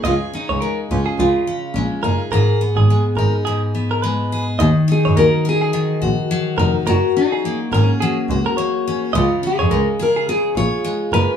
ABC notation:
X:1
M:4/4
L:1/16
Q:"Swing 16ths" 1/4=106
K:Ebm
V:1 name="Clean electric guitar"
e z2 d B z2 A3 z4 B z | B2 z A2 z B z A z2 B c3 z | e z2 d B z2 A3 z4 B z | B2 z A2 z B z A z2 B d3 z |
e z2 d B z2 A3 z4 B z |]
V:2 name="Nylon-string guitar"
F2 E4 D2 F4 D2 E2- | E2 z12 z2 | z2 A2 B2 A8- A2 | G2 E4 D6 z4 |
F2 A4 B2 A2 d4 c2 |]
V:3 name="Steel-string acoustic guitar"
[D,A]2 D2 A,2 F2 D,2 D2 A,2 A2 | [A,,A]2 C2 A,2 E2 A,,2 C2 A,2 A2 | E,2 E2 G,2 B2 E,2 G2 G,2 E2 | G,2 D2 B,2 A2 G,2 G2 B,2 D2 |
D,2 D2 A,2 A2 D,2 F2 A,2 D2 |]
V:4 name="Double bass" clef=bass
D,,3 D,,3 D,,2 D,,4 B,,,2 G,,,2 | A,,,3 A,,,3 A,,,2 z8 | E,,3 G,, E,,6 B,,,4 F,,,2 | G,,,4- G,,, z A,,,4 D,,4 z2 |
D,,3 F,, D,,6 B,,,4 G,,,2 |]